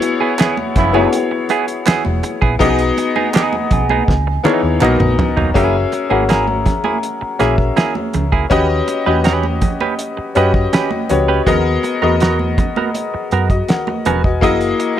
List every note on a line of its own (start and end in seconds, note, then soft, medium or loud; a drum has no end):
0.00 0.68 B3 loud
0.00 0.68 E4 loud
0.00 0.68 F#4 loud
0.00 0.69 G#4 loud
0.00 0.69 C#5 loud
0.00 muted clean electric guitar stroke soft
0.00 closed hi-hat medium
0.00 muted conga soft
0.20 0.34 B3 soft
0.20 0.34 E4 medium
0.20 0.33 G#4 medium
0.38 0.55 B3 medium
0.38 0.56 E4 medium
0.38 0.56 G#4 medium
0.38 snare loud
0.38 clap medium
0.38 closed hi-hat medium
0.57 high conga medium
0.76 1.05 F#1 medium
0.76 1.23 C#3 medium
0.76 1.23 B3 loud
0.76 1.23 E4 loud
0.76 muted clean electric guitar stroke soft
0.76 kick medium
0.76 snare soft
0.76 closed hi-hat medium
0.76 muted conga soft
0.76 low conga medium
0.93 2.12 B3 medium
0.93 1.08 B3 soft
0.93 2.12 E4 medium
0.93 1.08 E4 medium
0.93 2.12 F#4 medium
0.93 2.12 G#4 medium
0.93 1.07 G#4 medium
0.93 2.12 C#5 medium
0.93 high conga medium
1.13 closed hi-hat loud
1.31 muted clean electric guitar stroke soft
1.49 1.66 B3 medium
1.49 1.66 E4 medium
1.49 1.66 G#4 medium
1.49 closed hi-hat medium
1.68 muted clean electric guitar stroke soft
1.68 closed hi-hat medium
1.86 2.03 B3 medium
1.86 2.03 E4 medium
1.86 2.03 G#4 medium
1.86 muted fingered electric bass stroke soft
1.86 snare loud
1.86 clap medium
1.86 closed hi-hat medium
2.05 2.20 E1 medium
2.05 high conga medium
2.23 muted clean electric guitar stroke soft
2.23 closed hi-hat medium
2.42 2.57 A#1 medium
2.42 2.55 B3 soft
2.42 2.55 E4 medium
2.42 2.54 G#4 medium
2.42 kick medium
2.59 2.90 B1 loud
2.59 3.78 B3 loud
2.59 2.80 B3 medium
2.59 3.78 D#4 loud
2.59 2.81 D#4 medium
2.59 3.78 F#4 loud
2.59 3.78 G#4 loud
2.59 2.81 G#4 medium
2.59 3.79 D#5 loud
2.59 kick loud
2.59 closed hi-hat medium
2.59 low conga medium
2.78 closed hi-hat medium
2.97 muted clean electric guitar stroke soft
2.97 closed hi-hat medium
2.97 muted conga soft
3.16 3.29 B3 soft
3.16 3.29 D#4 medium
3.16 3.28 G#4 medium
3.16 high conga medium
3.34 3.54 B3 medium
3.34 3.54 D#4 medium
3.34 3.55 G#4 medium
3.34 snare loud
3.34 clap medium
3.34 closed hi-hat medium
3.34 muted conga soft
3.53 high conga medium
3.71 4.00 B1 medium
3.71 4.42 G#5 medium
3.71 muted clean electric guitar stroke soft
3.71 kick medium
3.71 closed hi-hat medium
3.71 low conga medium
3.89 4.03 B3 soft
3.89 4.03 D#4 medium
3.89 4.02 G#4 medium
3.89 high conga medium
4.08 4.37 C#2 loud
4.08 kick medium
4.08 snare medium
4.27 muted clean electric guitar stroke soft
4.44 4.65 E3 medium
4.44 4.79 B3 medium
4.44 4.64 B3 medium
4.44 4.80 D#4 medium
4.44 4.63 D#4 medium
4.44 4.82 E4 medium
4.44 4.82 G#4 medium
4.44 4.82 C#5 medium
4.44 clap medium
4.44 high tom medium
4.63 4.78 D#2 medium
4.63 muted clean electric guitar stroke soft
4.81 4.97 B1 medium
4.81 4.98 F#3 medium
4.81 4.98 A#3 medium
4.81 5.40 B3 medium
4.81 5.41 D#4 medium
4.81 4.98 D#4 medium
4.81 5.41 F#4 medium
4.81 5.41 A#4 medium
4.81 5.41 D#5 medium
4.81 clap medium
4.81 mid tom medium
5.00 5.15 A#1 medium
5.00 mid tom medium
5.00 high conga medium
5.19 muted clean electric guitar stroke soft
5.19 floor tom loud
5.19 muted conga soft
5.19 low conga medium
5.37 5.52 E1 medium
5.37 5.50 F#3 soft
5.37 5.50 A#3 soft
5.37 5.49 D#4 medium
5.37 floor tom medium
5.54 5.85 F#1 loud
5.54 5.75 A#3 medium
5.54 5.99 C#4 loud
5.54 5.76 E4 medium
5.54 6.00 F#4 medium
5.54 6.00 G#4 medium
5.54 5.76 G#4 medium
5.54 6.00 A#4 medium
5.54 6.00 E5 loud
5.54 kick medium
5.54 closed hi-hat medium
5.54 low conga medium
5.92 muted clean electric guitar stroke soft
5.92 closed hi-hat medium
5.92 muted conga soft
6.09 6.69 G#1 medium
6.09 6.24 A#3 soft
6.09 7.14 C#4 medium
6.09 6.24 E4 soft
6.09 7.14 F#4 medium
6.09 7.14 G#4 medium
6.09 6.23 G#4 soft
6.09 7.14 A#4 medium
6.09 7.15 F#5 medium
6.09 high conga soft
6.29 6.45 A#3 medium
6.29 6.46 E4 medium
6.29 6.46 G#4 medium
6.29 8.85 A#5 medium
6.29 snare loud
6.29 closed hi-hat medium
6.29 muted conga soft
6.48 high conga medium
6.66 muted clean electric guitar stroke soft
6.66 kick medium
6.66 snare soft
6.66 closed hi-hat medium
6.66 muted conga soft
6.66 low conga medium
6.84 6.98 A#3 soft
6.84 6.98 E4 soft
6.84 6.97 G#4 medium
6.84 high conga medium
7.03 closed hi-hat medium
7.21 muted clean electric guitar stroke soft
7.21 muted fingered electric bass stroke soft
7.39 7.70 A#1 medium
7.39 7.56 A#3 medium
7.39 8.29 C#4 medium
7.39 7.56 E4 medium
7.39 8.29 F#4 medium
7.39 8.29 G#4 medium
7.39 7.56 G#4 medium
7.39 8.29 A#4 medium
7.39 8.29 E5 medium
7.39 snare soft
7.39 closed hi-hat medium
7.39 muted conga soft
7.58 kick medium
7.76 7.93 A#3 medium
7.76 7.93 E4 medium
7.76 7.93 G#4 medium
7.76 snare loud
7.76 closed hi-hat medium
7.95 high conga medium
8.13 8.43 C#2 medium
8.13 muted clean electric guitar stroke soft
8.13 closed hi-hat medium
8.13 muted conga soft
8.13 low conga medium
8.32 8.46 A#3 soft
8.32 8.45 E4 medium
8.32 8.45 G#4 medium
8.32 kick medium
8.50 8.80 D#2 loud
8.50 8.95 C#4 loud
8.50 8.67 C#4 medium
8.50 8.95 F#4 loud
8.50 8.95 G4 loud
8.50 8.67 G4 medium
8.50 8.96 B4 medium
8.50 8.68 B4 medium
8.50 8.96 D#5 loud
8.50 kick medium
8.50 closed hi-hat medium
8.50 muted conga soft
8.50 low conga medium
8.88 muted clean electric guitar stroke soft
8.88 closed hi-hat medium
8.88 muted conga soft
9.06 9.65 E2 medium
9.06 10.10 C#4 medium
9.06 9.20 C#4 soft
9.06 10.10 F#4 medium
9.06 10.10 G4 medium
9.06 9.19 G4 medium
9.06 9.19 B4 medium
9.06 10.10 B4 medium
9.06 10.10 D#5 medium
9.06 high conga soft
9.24 9.45 C#4 medium
9.24 9.45 G4 medium
9.24 9.45 B4 medium
9.24 snare loud
9.24 closed hi-hat medium
9.24 muted conga soft
9.43 high conga medium
9.61 muted clean electric guitar stroke soft
9.61 kick medium
9.61 closed hi-hat medium
9.61 muted conga soft
9.61 low conga medium
9.80 9.94 C#4 soft
9.80 9.94 G4 soft
9.80 9.93 B4 medium
9.80 high conga medium
9.99 closed hi-hat medium
10.17 muted clean electric guitar stroke soft
10.17 muted fingered electric bass stroke soft
10.35 10.65 F#2 medium
10.35 10.95 C#4 medium
10.35 10.52 C#4 medium
10.35 10.95 F#4 medium
10.35 10.95 G4 medium
10.35 10.53 G4 medium
10.35 10.95 B4 medium
10.35 10.53 B4 medium
10.35 10.96 D#5 medium
10.35 closed hi-hat medium
10.35 muted conga soft
10.54 kick medium
10.73 10.89 C#4 medium
10.73 10.90 G4 medium
10.73 10.90 B4 medium
10.73 snare loud
10.73 closed hi-hat medium
10.73 muted conga soft
10.91 high conga medium
11.09 11.39 C#2 medium
11.09 11.39 C#4 medium
11.09 11.40 F#4 medium
11.09 11.40 G4 medium
11.09 11.40 B4 medium
11.09 11.40 C#5 medium
11.09 muted clean electric guitar stroke soft
11.09 closed hi-hat medium
11.09 low conga medium
11.28 11.41 C#4 soft
11.28 11.41 G4 soft
11.28 11.41 B4 medium
11.46 11.76 D#2 loud
11.46 11.91 B3 loud
11.46 11.63 B3 medium
11.46 11.91 F#4 medium
11.46 11.63 F#4 medium
11.46 11.91 G#4 loud
11.46 11.63 A#4 medium
11.46 11.92 A#4 medium
11.46 11.92 D#5 loud
11.46 kick loud
11.46 closed hi-hat medium
11.46 low conga medium
11.83 muted clean electric guitar stroke soft
11.83 closed hi-hat medium
11.83 muted conga soft
12.02 12.61 E2 medium
12.02 13.06 B3 medium
12.02 12.15 B3 soft
12.02 13.06 F#4 medium
12.02 12.15 F#4 medium
12.02 13.06 G#4 medium
12.02 12.15 A#4 medium
12.02 13.06 A#4 medium
12.02 13.06 D#5 medium
12.02 high conga soft
12.20 12.37 B3 medium
12.20 12.37 F#4 medium
12.20 12.38 A#4 medium
12.20 snare loud
12.20 closed hi-hat medium
12.39 high conga medium
12.58 muted clean electric guitar stroke soft
12.58 kick medium
12.58 closed hi-hat medium
12.58 muted conga soft
12.58 low conga medium
12.76 12.90 B3 soft
12.76 12.89 F#4 medium
12.76 12.89 A#4 medium
12.76 high conga medium
12.94 closed hi-hat loud
12.94 muted conga soft
13.14 muted clean electric guitar stroke soft
13.14 muted fingered electric bass stroke soft
13.31 13.61 F#2 medium
13.31 13.48 B3 medium
13.31 13.48 F#4 medium
13.31 13.49 A#4 medium
13.31 closed hi-hat medium
13.31 muted conga soft
13.50 13.68 F#4 medium
13.50 13.68 D#5 medium
13.50 kick medium
13.50 closed hi-hat medium
13.68 14.04 A#4 medium
13.68 14.04 F#5 medium
13.68 snare loud
13.68 closed hi-hat medium
13.68 muted conga soft
13.87 muted clean electric guitar stroke soft
13.87 high conga medium
14.05 14.43 E1 medium
14.05 14.22 B3 medium
14.05 14.22 F#4 medium
14.05 14.22 A#4 medium
14.05 14.24 B4 medium
14.05 14.23 G#5 medium
14.05 closed hi-hat medium
14.05 muted conga soft
14.05 low conga medium
14.24 14.41 F#4 medium
14.24 14.41 D#5 medium
14.24 kick medium
14.41 14.72 F#1 loud
14.41 14.86 A#3 loud
14.41 14.86 E4 medium
14.41 14.59 E4 medium
14.41 14.87 F#4 loud
14.41 14.87 G#4 medium
14.41 14.59 A#4 medium
14.41 14.87 D#5 loud
14.41 14.59 D#5 medium
14.41 kick loud
14.41 closed hi-hat medium
14.41 muted conga soft
14.41 low conga medium
14.61 closed hi-hat medium
14.79 muted clean electric guitar stroke soft
14.79 closed hi-hat medium
14.97 15.00 A#3 medium